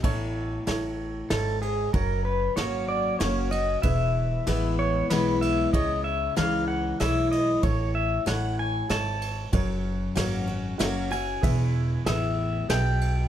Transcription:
<<
  \new Staff \with { instrumentName = "Pedal steel guitar" } { \time 3/4 \key a \lydian \tempo 4 = 95 r2 a'8 gis'8 | ais'8 b'8 cis''8 d''8 cis''8 dis''8 | e''4. cis''8 b'8 e''8 | dis''8 e''8 f''8 fis''8 e''8 dis''8 |
cis''8 e''8 fis''8 gis''8 a''4 | r2 r8 gis''8~ | gis''4 e''4 g''4 | }
  \new Staff \with { instrumentName = "Upright piano" } { \time 3/4 \key a \lydian <e' a' cis''>4 <e' a' cis''>4 <e' a' cis''>4 | <fis' ais' cis''>4 <fis' ais' cis''>4 <fis' ais' cis''>4 | <e' gis' b'>4 <e' gis' b'>4 <e' gis' cis''>4 | <e' gis' cis''>4 <gis' cis''>4 <gis' cis''>4 |
<e' a' cis''>4 <e' a' cis''>4 <e' a' cis''>4 | <fis' ais' cis''>4 <fis' ais' cis''>4 <fis' ais' e''>4 | <gis' b' e''>4 <gis' b' dis'''>4 <gis' b' e''>4 | }
  \new Staff \with { instrumentName = "Steel-string acoustic guitar" } { \clef bass \time 3/4 \key a \lydian << { r2. | r4 <fis ais cis' fis'>4 <fis ais cis' fis'>8 <cis' fis'>8 | r4 <e gis b e'>4 <e gis b e'>4 | r4 <e gis dis'>4 <e gis e'>4 |
r2. | r4 <fis ais cis' fis'>8 <cis' fis'>8 <fis ais cis' fis'>8 <cis' fis'>8 | r2. | } \\ { a,4 a,4 gis,4 | fis,2 r4 | e,2 r4 | cis2 r4 |
a,4 a,4 gis,4 | fis,2 r4 | e,4 a,4 b,4 | } >> }
  \new Staff \with { instrumentName = "Upright bass" } { \clef bass \time 3/4 \key a \lydian a,,4 a,,4 gis,,4 | fis,,4 gis,,4 fis,,4 | e,,4 a,,4 b,,4 | cis,4 cis,4 b,,4 |
a,,4 a,,4 gis,,4 | fis,,4 gis,,4 fis,,4 | e,,4 a,,4 b,,4 | }
  \new DrumStaff \with { instrumentName = "Drums" } \drummode { \time 3/4 <cymc bd>4 <cymr sn>4 <cymr sn>8 cymr8 | <bd cymr>4 <cymr sn>4 <cymr sn>8 cymr8 | <bd cymr>4 <cymr sn>4 <cymr sn>8 cymr8 | <bd cymr>4 <cymr sn>4 <cymr sn>8 cymr8 |
<bd cymr>4 <cymr sn>4 <cymr sn>8 cymr8 | <bd cymr>4 <cymr sn>4 <cymr sn>8 cymr8 | <bd cymr>4 <cymr sn>4 <cymr sn>8 cymr8 | }
>>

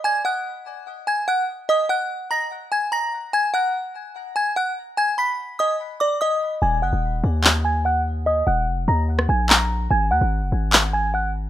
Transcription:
<<
  \new Staff \with { instrumentName = "Synth bell" } { \time 4/4 \key ees \minor \tempo 4 = 146 <aes'' aes'''>8 <ges'' ges'''>2 <aes'' aes'''>8 <ges'' ges'''>8 r8 | <ees'' ees'''>8 <ges'' ges'''>4 <bes'' bes'''>8 r8 <aes'' aes'''>8 <bes'' bes'''>4 | <aes'' aes'''>8 <ges'' ges'''>2 <aes'' aes'''>8 <ges'' ges'''>8 r8 | <aes'' aes'''>8 <ces''' ces''''>4 <ees'' ees'''>8 r8 <d'' d'''>8 <ees'' ees'''>4 |
<aes'' aes'''>8 <ges'' ges'''>2 <aes'' aes'''>8 <ges'' ges'''>8 r8 | <ees'' ees'''>8 <ges'' ges'''>4 <bes'' bes'''>8 r8 <aes'' aes'''>8 <bes'' bes'''>4 | <aes'' aes'''>8 <ges'' ges'''>2 <aes'' aes'''>8 <ges'' ges'''>8 r8 | }
  \new Staff \with { instrumentName = "808-style bass" } { \clef bass \time 4/4 \key ees \minor r1 | r1 | r1 | r1 |
ees,,8 ges,,16 ees,,8. ees,2~ ees,8~ | ees,8 ees,,8 f,,8 ees,4 bes,,4. | aes,,8 ees,16 aes,,8 ges,,16 aes,,2~ aes,,8 | }
  \new DrumStaff \with { instrumentName = "Drums" } \drummode { \time 4/4 r4 r4 r4 r4 | r4 r4 r4 r4 | r4 r4 r4 r4 | r4 r4 r4 r4 |
r4 r4 hc4 r4 | r4 r4 r16 ss8. hc4 | r4 r4 hc4 r4 | }
>>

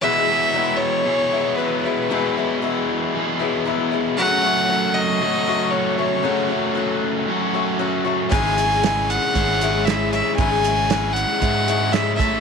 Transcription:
<<
  \new Staff \with { instrumentName = "Fiddle" } { \time 4/4 \key e \major \tempo 4 = 116 e''4. cis''4. b'8 b'8~ | b'4 r2. | fis''4. dis''4. cis''8 cis''8~ | cis''4 r2. |
gis''4. fis''4. e''8 e''8 | gis''4. fis''4. e''8 e''8 | }
  \new Staff \with { instrumentName = "Steel-string acoustic guitar" } { \time 4/4 \key e \major <e, b, fis gis b e'>8 <fis gis b e'>8 <fis gis b e'>4. <fis gis b e'>8 <fis gis b e'>8 <fis gis b e'>8 | <e, b, fis gis b e'>8 <fis gis b e'>8 <fis gis b e'>4. <fis gis b e'>8 <fis gis b e'>8 <fis gis b e'>8 | <fis, cis fis a cis' fis'>8 <fis a cis' fis'>8 <fis a cis' fis'>4. <fis a cis' fis'>8 <fis a cis' fis'>8 <fis a cis' fis'>8 | <fis, cis fis a cis' fis'>8 <fis a cis' fis'>8 <fis a cis' fis'>4. <fis a cis' fis'>8 <fis a cis' fis'>8 <fis a cis' fis'>8 |
<gis, cis gis cis' e' gis'>8 <gis cis' e' gis'>8 <gis cis' e' gis'>4. <gis cis' e' gis'>8 <gis cis' e' gis'>8 <gis cis' e' gis'>8 | <gis, cis gis cis' e' gis'>8 <gis cis' e' gis'>8 <gis cis' e' gis'>4. <gis cis' e' gis'>8 <gis cis' e' gis'>8 <cis' e' a'>8 | }
  \new Staff \with { instrumentName = "Overdriven electric guitar" } { \clef bass \time 4/4 \key e \major <e, b, e gis b gis'>2 <e, b, e gis b gis'>2 | <e, b, e gis b gis'>2 <e, b, e gis b gis'>2 | <fis, cis fis a cis' fis'>2 <fis, cis fis a cis' fis'>2 | <fis, cis fis a cis' fis'>2 <fis, cis fis a cis' fis'>2 |
<gis, cis gis cis' e' gis'>2 <gis, cis gis cis' e' gis'>2 | <gis, cis gis cis' e' gis'>2 <gis, cis gis cis' e' gis'>4. <a, a cis' e' a'>8 | }
  \new Staff \with { instrumentName = "Fingered electric bass" } { \clef bass \time 4/4 \key e \major r1 | r1 | r1 | r1 |
gis,,2 gis,,2 | gis,,2 gis,4. a,,8 | }
  \new DrumStaff \with { instrumentName = "Drums" } \drummode { \time 4/4 r4 r4 r4 r4 | r4 r4 r4 r4 | r4 r4 r4 r4 | r4 r4 r4 r4 |
<hh bd>8 hh8 <hh sn>8 hh8 <hh bd>8 hh8 <hh sn>8 hh8 | <hh bd>8 hh8 <hh sn>8 hh8 <hh bd>8 hh8 <hh sn>8 <hh bd>8 | }
>>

